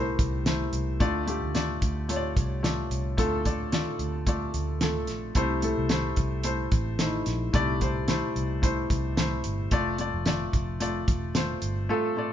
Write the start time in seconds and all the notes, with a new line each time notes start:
Already playing: C2 C3 A3 E4 G4 A#4
0.00 C5
0.19 C2, kick, closed hi-hat
0.46 A3 E4 C5, snare, closed hi-hat
0.73 C2, closed hi-hat
1.00 D2 D3 A3 F4 D5, kick, closed hi-hat
1.27 A3 F4 G4, closed hi-hat
1.43 D2
1.54 A3 F4 D5, snare, closed hi-hat
1.82 D2, kick, closed hi-hat
2.09 A3 F4 C#5, closed hi-hat
2.16 D5
2.37 C2, kick, closed hi-hat
2.63 A3 F4 D5, snare, closed hi-hat
2.90 C2, closed hi-hat
3.17 D2 D3 A3 F4 A4, kick, closed hi-hat
3.45 A3 F4 D5, kick, closed hi-hat
3.72 A3 F4 D5, snare, closed hi-hat
3.99 D2, closed hi-hat
4.27 A3 F4 D5, kick, closed hi-hat
4.54 D2, closed hi-hat
4.81 A3 F4 A4, snare, closed hi-hat
5.07 A#1, snare, closed hi-hat
5.35 C2 C3 A3 E4 C5, kick, closed hi-hat
5.62 A3 E4 A4, closed hi-hat
5.78 C2
5.89 A3 E4 C5, snare, closed hi-hat
6.16 C2, kick, closed hi-hat
6.43 A3 E4 C5, closed hi-hat
6.72 A1, kick, closed hi-hat
6.99 A3 D#4 C5, snare, closed hi-hat
7.06 E4
7.26 A#1, snare, closed hi-hat
7.53 C2 C3 A3 E4 D5, kick, closed hi-hat
7.81 A3 E4 C5, kick, closed hi-hat
8.08 A3 E4 C5, snare, closed hi-hat
8.36 C2, closed hi-hat
8.62 A3 E4 C5, kick, closed hi-hat
8.90 C2, kick, closed hi-hat
9.17 A3 E4 C5, snare, closed hi-hat
9.44 G1, closed hi-hat
9.71 F1 A3 F4 D5, kick, closed hi-hat
9.98 A3 F4 D5, closed hi-hat
10.14 F1
10.26 A3 F4 D5, snare, closed hi-hat
10.53 F1, kick, closed hi-hat
10.80 A3 F4 D5, closed hi-hat
11.08 E1, kick, closed hi-hat
11.34 A3 F4 C5, snare, closed hi-hat
11.62 G1, closed hi-hat
11.89 A3 F4 A4
12.17 A3 F4 D5